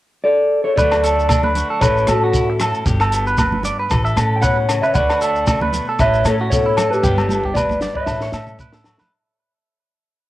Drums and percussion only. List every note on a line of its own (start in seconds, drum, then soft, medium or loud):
0.78 kick medium
0.78 shekere medium
0.92 cross-stick medium
0.92 low agogo medium
1.04 closed hi-hat soft
1.04 shekere medium
1.20 shekere soft
1.29 kick medium
1.29 cross-stick medium
1.29 high conga medium
1.29 low agogo medium
1.29 shekere loud
1.43 high conga medium
1.43 low conga medium
1.55 closed hi-hat medium
1.55 low conga medium
1.55 shekere medium
1.81 kick medium
1.81 cross-stick medium
1.81 low agogo medium
1.81 shekere loud
1.97 shekere soft
2.07 cross-stick medium
2.07 closed hi-hat medium
2.07 high conga medium
2.07 low agogo medium
2.07 shekere medium
2.34 kick medium
2.34 shekere loud
2.60 cross-stick medium
2.60 closed hi-hat medium
2.60 low conga medium
2.60 low agogo medium
2.60 shekere medium
2.74 shekere soft
2.86 kick medium
2.86 shekere loud
3.00 cross-stick medium
3.00 low agogo medium
3.12 closed hi-hat soft
3.12 shekere medium
3.27 shekere soft
3.38 kick medium
3.38 cross-stick medium
3.38 high conga medium
3.38 low agogo medium
3.38 shekere medium
3.52 high conga medium
3.52 low conga medium
3.63 closed hi-hat soft
3.63 low conga medium
3.63 shekere medium
3.90 kick medium
3.90 cross-stick medium
3.90 low agogo medium
3.90 shekere loud
4.06 shekere soft
4.16 cross-stick medium
4.16 closed hi-hat soft
4.16 high conga medium
4.16 low agogo medium
4.16 shekere medium
4.43 kick medium
4.43 shekere loud
4.69 cross-stick medium
4.69 closed hi-hat soft
4.69 low agogo medium
4.69 shekere medium
4.84 shekere soft
4.94 kick loud
4.94 shekere loud
5.09 cross-stick medium
5.09 low agogo medium
5.21 closed hi-hat soft
5.21 shekere medium
5.35 shekere soft
5.47 kick medium
5.47 cross-stick medium
5.47 high conga medium
5.47 low agogo medium
5.47 shekere loud
5.61 high conga medium
5.61 low conga medium
5.72 closed hi-hat soft
5.72 low conga medium
5.72 shekere medium
5.99 kick medium
5.99 cross-stick medium
5.99 low agogo medium
5.99 shekere loud
6.14 shekere soft
6.25 cross-stick medium
6.25 closed hi-hat soft
6.25 high conga medium
6.25 low agogo medium
6.25 shekere medium
6.52 kick medium
6.52 shekere loud
6.77 cross-stick medium
6.77 closed hi-hat medium
6.77 low conga medium
6.77 low agogo medium
6.77 shekere medium
6.93 shekere soft
7.03 kick medium
7.03 high tom soft
7.03 shekere medium
7.18 high tom soft
7.18 low agogo medium
7.18 shekere soft
7.29 high tom medium
7.29 high conga medium
7.29 shekere medium
7.44 kick soft
7.55 kick medium
7.55 mid tom medium
7.55 high conga medium
7.55 low agogo medium
7.55 shekere medium
7.69 kick soft
7.69 high conga medium
7.69 low conga medium
7.69 shekere soft
7.81 snare medium
7.81 low conga medium
7.81 shekere medium
7.95 kick medium
8.06 kick medium
8.06 snare medium
8.06 low agogo medium
8.06 shekere medium
8.21 snare medium
8.21 shekere soft
8.32 snare medium
8.32 high conga medium
8.32 low agogo medium
8.32 shekere medium
8.47 mid tom medium
8.47 shekere soft
8.59 kick medium
8.59 high conga medium
8.59 shekere medium
8.73 snare medium
8.73 high conga medium
8.73 shekere soft
8.84 snare medium
8.84 low conga medium
8.84 low agogo medium
8.84 shekere medium
8.98 snare medium
8.98 low conga medium
8.98 shekere soft